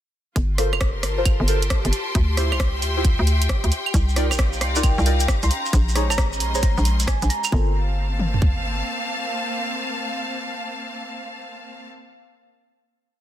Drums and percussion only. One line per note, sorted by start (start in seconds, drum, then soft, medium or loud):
0.36 kick loud
0.36 closed hi-hat medium
0.58 cross-stick medium
0.58 open hi-hat loud
0.73 cross-stick soft
0.73 claves medium
0.81 kick loud
0.81 cross-stick loud
0.81 closed hi-hat medium
1.03 cross-stick medium
1.03 open hi-hat loud
1.25 kick loud
1.25 closed hi-hat medium
1.25 claves medium
1.48 open hi-hat loud
1.62 closed hi-hat medium
1.70 kick loud
1.70 cross-stick loud
1.70 closed hi-hat medium
1.85 closed hi-hat soft
1.93 open hi-hat loud
2.15 kick loud
2.15 closed hi-hat medium
2.37 cross-stick medium
2.37 open hi-hat loud
2.52 cross-stick soft
2.52 claves medium
2.60 kick loud
2.60 cross-stick loud
2.60 closed hi-hat medium
2.82 open hi-hat medium
3.05 kick loud
3.05 closed hi-hat medium
3.27 open hi-hat loud
3.42 closed hi-hat medium
3.49 kick loud
3.49 cross-stick loud
3.49 closed hi-hat medium
3.64 closed hi-hat soft
3.72 open hi-hat loud
3.86 claves medium
3.94 kick loud
3.94 closed hi-hat medium
3.94 shekere medium
4.09 shekere soft
4.16 cross-stick medium
4.16 open hi-hat loud
4.31 cross-stick soft
4.31 claves medium
4.31 shekere loud
4.39 kick loud
4.39 cross-stick loud
4.39 closed hi-hat medium
4.53 shekere soft
4.61 cross-stick medium
4.61 open hi-hat loud
4.76 shekere medium
4.83 kick loud
4.83 closed hi-hat medium
4.83 claves medium
4.83 shekere medium
4.99 shekere soft
5.06 open hi-hat loud
5.20 closed hi-hat medium
5.20 shekere medium
5.28 kick loud
5.28 cross-stick loud
5.28 closed hi-hat medium
5.28 shekere medium
5.43 closed hi-hat soft
5.43 shekere soft
5.51 open hi-hat medium
5.66 shekere medium
5.73 kick loud
5.73 closed hi-hat medium
5.73 shekere medium
5.89 shekere soft
5.96 cross-stick medium
5.96 open hi-hat loud
6.10 cross-stick soft
6.10 claves medium
6.10 shekere medium
6.18 kick loud
6.18 cross-stick loud
6.18 closed hi-hat medium
6.33 shekere soft
6.40 open hi-hat medium
6.55 shekere medium
6.63 kick loud
6.63 closed hi-hat medium
6.63 shekere medium
6.77 shekere soft
6.85 open hi-hat loud
7.00 closed hi-hat medium
7.00 shekere medium
7.08 kick loud
7.08 cross-stick loud
7.08 closed hi-hat medium
7.08 shekere medium
7.22 closed hi-hat soft
7.22 shekere soft
7.30 open hi-hat medium
7.44 claves medium
7.44 shekere medium
7.52 kick loud
8.19 mid tom medium
8.34 floor tom medium
8.42 kick medium